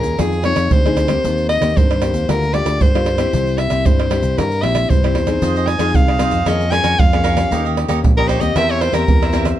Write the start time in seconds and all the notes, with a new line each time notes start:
Already playing: A#2 A#3 C#4 G#4 A#4
0.03 D#2, pandeiro, shaker
0.19 F2 F3 C4 D#4 G#4, pandeiro, tamborim, shaker, surdo
0.32 pandeiro, shaker
0.44 C4 D#4 G#4 C#5, pandeiro, tamborim
0.56 F2, pandeiro, tamborim, shaker
0.71 D2 C3 C5, pandeiro, shaker, surdo
0.86 C4 D#4 G#4, pandeiro, tamborim, shaker
0.97 pandeiro, tamborim, shaker
1.08 A#3 C4 G4, pandeiro, tamborim, shaker
1.24 D#2 D#3, pandeiro, shaker, surdo
1.38 pandeiro, shaker
1.49 D#5, pandeiro, tamborim
1.61 D#2 A#3 C4 G4, pandeiro, tamborim, shaker
1.77 G2 D#3 C5, pandeiro, shaker, surdo
1.91 pandeiro, tamborim, shaker
2.01 A#3 C4 G4, pandeiro, tamborim, shaker
2.14 D#2, pandeiro, shaker
2.29 D2 D3 A#3 F4 G4 A#4, pandeiro, tamborim, shaker, surdo
2.43 pandeiro, shaker
2.54 A#3 F4 G4 D5, pandeiro, tamborim
2.66 D2, pandeiro, tamborim, shaker
2.81 G2 D3 C5, pandeiro, shaker, surdo
2.95 A#3 F4 G4, pandeiro, tamborim, shaker
3.06 pandeiro, tamborim
3.18 C4 E4 G4, pandeiro, tamborim, shaker
3.33 C2 C3, pandeiro, shaker, surdo
3.47 pandeiro, shaker
3.58 E5, pandeiro, tamborim
3.70 C2 C4 E4 G4, pandeiro, tamborim, shaker
3.85 G2 C5, pandeiro, shaker, surdo
4.00 pandeiro, tamborim, shaker
4.10 C4 E4 G4, pandeiro, tamborim
4.22 C2, pandeiro, shaker
4.38 G2 C3 A#4, pandeiro, tamborim, shaker, surdo
4.52 pandeiro, shaker
4.62 A#1 C4 E4 G4 E5, pandeiro, tamborim
4.75 pandeiro, tamborim, shaker
4.90 C2 G2 C5, pandeiro, shaker, surdo
5.04 C4 E4 G4, pandeiro, tamborim, shaker
5.15 E2, pandeiro, tamborim
5.27 C4 D#4 G#4, pandeiro, tamborim, shaker
5.42 F2 F3 F4 G#4 C5 D#5, pandeiro, shaker, surdo
5.56 G#4 C5 D#5, pandeiro, shaker
5.67 G#5, pandeiro, tamborim
5.79 F2 C4 D#4 F4 G#4 C5 D#5, pandeiro, tamborim, shaker
5.94 C2 C3 F5, pandeiro, shaker, surdo
6.08 G#4 C5 D#5, pandeiro, tamborim, shaker
6.19 C4 D#4 F4 G#4 C5 D#5, pandeiro, tamborim, shaker
6.31 F2 G#4 C5 D#5, pandeiro, shaker
6.46 F2 F3 A#3 C#4 G#4 A#4 C#5 D#5 F5 G#5, pandeiro, tamborim, shaker, surdo
6.61 pandeiro, shaker
6.71 A#3 C#4 G#4 A#4 C#5 F5 G#5, pandeiro, tamborim, shaker
6.83 F2 A#4 C#5 F5 G#5, pandeiro, tamborim, shaker
6.98 F2 F3 F5, pandeiro, shaker, surdo
7.13 A#3 C#4 G#4 C#5 F5 G#5, pandeiro, tamborim, shaker
7.24 A#4 C#5 F5 G#5, pandeiro, tamborim
7.37 A#3 C#4 G4 C#5 F5 G#5, pandeiro, tamborim, shaker
7.51 D#2 D#3 D#4 G4 C#5 D#5, pandeiro, shaker, surdo
7.65 G4 C#5 D#5, pandeiro, shaker
7.77 pandeiro, tamborim
7.88 D#2 A#3 C#4 D#4 G4 C#5 D#5, pandeiro, tamborim, shaker
8.04 A#1 A#2, pandeiro, shaker, surdo
8.17 A#3 C#4 G4 A#4 C#5 D#5, pandeiro, tamborim, shaker
8.28 D#4 G4 C5 C#5 D#5, pandeiro, tamborim, shaker
8.40 D#2 A#3 C4 G4 C#5 D#5, pandeiro, shaker
8.56 E2 E3 E4 A#4 C5 E5, pandeiro, tamborim, shaker, surdo
8.70 C#5, pandeiro, shaker
8.81 E4 A#4 C5 E5, pandeiro, tamborim
8.92 E2 A#3 C4 E4 G4 A#4 C5 E5, pandeiro, tamborim, shaker
9.08 E2 E3, pandeiro, shaker, surdo
9.22 A#4 C5 E5, pandeiro, tamborim, shaker
9.32 A#3 C4 E4 G4 A#4 C5 E5, pandeiro, tamborim, shaker
9.45 A#4 C5 E5, pandeiro, tamborim, shaker